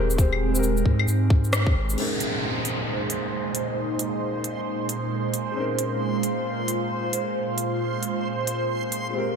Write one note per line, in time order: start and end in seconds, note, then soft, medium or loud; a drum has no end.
0.00 0.85 D#1 loud
0.00 0.17 G#3 medium
0.00 1.94 G#3 medium
0.00 0.18 C4 medium
0.00 1.94 C4 medium
0.00 0.19 G4 medium
0.00 0.59 A#4 loud
0.10 shaker medium
0.17 0.49 G#3 medium
0.17 0.51 C4 medium
0.17 0.52 G4 medium
0.17 0.53 C5 loud
0.17 kick loud
0.17 shaker medium
0.33 claves soft
0.51 1.92 G#3 medium
0.51 1.94 C4 medium
0.55 1.97 G4 medium
0.55 shaker medium
0.59 1.98 A#4 medium
0.63 shaker medium
0.77 shaker soft
0.85 1.07 G#2 loud
0.85 kick medium
0.99 claves soft
1.08 1.74 G#2 medium
1.08 shaker medium
1.30 kick loud
1.44 shaker soft
1.53 cross-stick loud
1.53 shaker medium
1.67 kick loud
1.75 1.96 G#1 medium
1.89 shaker medium
1.93 5.50 G#3 medium
1.93 5.52 C4 medium
1.93 9.36 C5 medium
1.97 9.10 A#2 medium
1.97 9.10 G#3 medium
1.97 5.54 C#4 medium
1.97 5.52 D#4 medium
1.97 5.55 D#4 medium
1.97 9.10 C5 medium
1.97 crash medium
1.97 downlifter medium
2.02 5.56 A#4 medium
2.20 open hi-hat medium
2.65 open hi-hat medium
3.10 open hi-hat medium
3.55 open hi-hat medium
3.99 open hi-hat medium
4.44 open hi-hat medium
4.89 open hi-hat medium
5.34 open hi-hat medium
5.52 9.09 G#3 medium
5.52 9.11 C4 medium
5.52 9.11 F4 medium
5.56 9.12 C#4 medium
5.56 9.13 D#4 medium
5.56 9.14 A#4 medium
5.79 open hi-hat medium
6.23 open hi-hat medium
6.68 open hi-hat medium
7.13 open hi-hat medium
7.58 open hi-hat medium
8.03 open hi-hat medium
8.47 open hi-hat medium
8.92 open hi-hat medium
9.10 9.36 G#3 medium
9.10 9.36 C4 medium
9.14 9.36 G#2 medium
9.14 9.36 C4 medium
9.14 9.36 G4 medium
9.14 9.36 A#4 medium